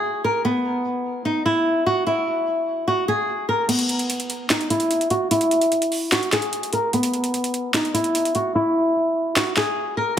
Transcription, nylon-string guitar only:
0.00 0.22 G#4 medium
0.24 0.40 A#4 medium
0.45 1.22 B3 loud
1.25 1.41 D#4 medium
1.46 1.84 E4 medium
1.86 2.03 F#4 medium
2.07 2.84 E4 loud
2.88 3.04 F#4 medium
3.08 3.46 G#4 medium
3.49 3.65 A#4 medium
3.68 4.46 B3 medium
4.50 4.66 D#4 medium
4.70 5.08 E4 medium
5.11 5.27 F#4 medium
5.31 6.08 E4 loud
6.12 6.28 F#4 medium
6.33 6.71 G#4 medium
6.73 6.89 A#4 medium
6.93 7.70 B3 loud
7.74 7.90 D#4 medium
7.94 8.32 E4 medium
8.35 8.51 F#4 medium
8.55 9.32 E4 loud
9.36 9.52 F#4 medium
9.57 9.95 G#4 medium
9.97 10.13 A#4 medium

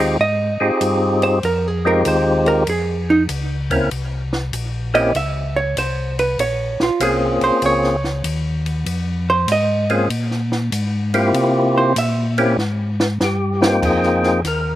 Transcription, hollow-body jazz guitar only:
0.21 1.19 D#5 medium
1.23 1.43 C5 loud
1.45 1.68 A#4 medium
1.68 1.86 G#4 medium
1.87 2.06 A#4 medium
2.08 2.47 C5 loud
2.48 2.67 A#4 loud
2.69 3.09 G#4 medium
3.10 3.22 D#4 medium
4.95 5.15 D#5 loud
5.16 5.56 E5 loud
5.56 5.76 C#5 loud
5.78 6.18 C5 loud
6.19 6.39 B4 loud
6.40 6.80 C#5 loud
6.83 7.02 F4 medium
7.03 7.42 G#4 medium
7.44 7.63 C5 medium
7.66 8.64 C#5 loud
9.30 9.49 C5 loud
9.52 9.91 D#5 loud
11.78 11.97 C5 medium
11.98 12.23 E5 loud

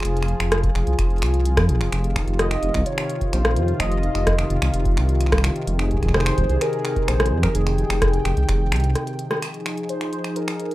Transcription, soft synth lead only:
2.39 2.88 D#5 loud
2.86 3.35 C#5 loud
3.33 3.79 C5 loud
3.80 4.70 D#5 loud
6.15 6.63 C5 loud
6.61 7.10 A#4 loud
7.08 7.43 C5 loud
7.43 7.56 A#4 medium
7.55 8.96 G#4 loud
9.89 10.11 C5 loud
10.13 10.35 C5 loud
10.36 10.75 A#4 loud

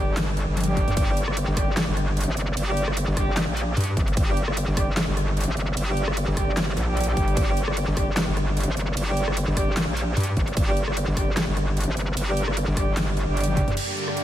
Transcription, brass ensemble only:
0.00 0.15 G3 medium
0.00 0.15 D4 medium
0.00 0.15 G4 loud
0.68 1.05 G3 medium
0.68 1.05 D4 medium
0.68 1.05 G4 loud
1.08 1.18 G3 loud
1.08 1.18 D4 medium
1.08 1.18 G4 loud
1.57 1.69 G3 medium
1.57 1.69 D4 medium
1.57 1.69 G4 medium
2.68 2.85 G3 medium
2.68 2.85 D4 medium
2.68 2.85 G4 loud
3.17 3.35 G3 medium
3.17 3.35 D4 medium
3.17 3.35 G4 loud
4.28 4.38 G3 loud
4.28 4.38 D4 medium
4.28 4.38 G4 loud
4.77 4.89 G3 medium
4.77 4.89 D4 medium
4.77 4.89 G4 loud
5.88 6.05 G3 medium
5.88 6.05 D4 medium
5.88 6.05 G4 loud
6.37 6.55 G3 medium
6.37 6.55 D4 medium
6.37 6.55 G4 loud
6.88 7.05 G3 medium
6.88 7.05 D4 medium
6.88 7.05 G4 medium
7.08 7.45 G3 medium
7.08 7.45 D4 medium
7.08 7.45 G4 loud
7.48 7.58 G3 loud
7.48 7.58 D4 medium
7.48 7.58 G4 loud
7.97 8.09 G3 medium
7.97 8.09 D4 medium
7.97 8.09 G4 loud
9.08 9.25 G3 medium
9.08 9.25 D4 medium
9.08 9.25 G4 loud
9.57 9.75 G3 loud
9.57 9.75 D4 medium
9.57 9.75 G4 loud
10.68 10.78 G3 loud
10.68 10.78 D4 medium
10.68 10.78 G4 loud
11.17 11.29 G3 medium
11.17 11.29 D4 medium
11.17 11.29 G4 loud
12.28 12.45 G3 loud
12.28 12.45 D4 medium
12.28 12.45 G4 loud
12.77 12.95 G3 loud
12.77 12.95 D4 medium
12.77 12.95 G4 loud
13.28 13.45 G3 medium
13.28 13.45 D4 medium
13.28 13.45 G4 medium
13.48 13.76 G3 medium
13.48 13.76 D4 medium
13.48 13.76 G4 loud

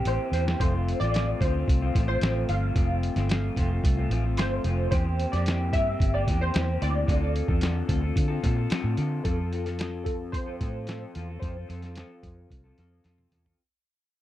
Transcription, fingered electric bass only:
0.05 0.16 A1 medium
0.32 0.54 E2 medium
0.60 0.93 F1 loud
1.01 1.33 A1 medium
1.41 1.63 D2 loud
1.68 1.90 C2 loud
1.95 2.17 A1 loud
2.22 2.43 A1 medium
2.49 2.71 G1 loud
2.76 3.08 F1 loud
3.16 3.49 G1 medium
3.57 3.78 F1 medium
3.84 4.06 C2 loud
4.09 4.37 A1 medium
4.37 4.59 G1 medium
4.64 4.86 F1 loud
4.92 5.24 E2 loud
5.33 5.73 F2 medium
5.73 5.95 G2 medium
6.00 6.29 G1 loud
6.28 6.49 E2 medium
6.56 6.77 E2 loud
6.82 7.03 D2 loud
7.08 7.41 D2 loud
7.49 7.81 E2 medium
7.89 8.11 D2 medium
8.16 8.38 D3 loud
8.44 8.66 A#2 loud
8.71 muted fingered electric bass stroke medium
8.84 8.95 A2 medium
8.98 9.20 D3 loud
9.25 10.57 F2 loud
10.61 11.04 A2 medium
11.16 11.37 E2 medium
11.42 11.63 F2 loud
11.69 12.02 F2 medium
12.24 12.45 F2 medium
12.51 12.72 C2 medium
12.78 13.00 F2 medium
13.05 13.26 F2 medium
13.31 13.53 E2 medium

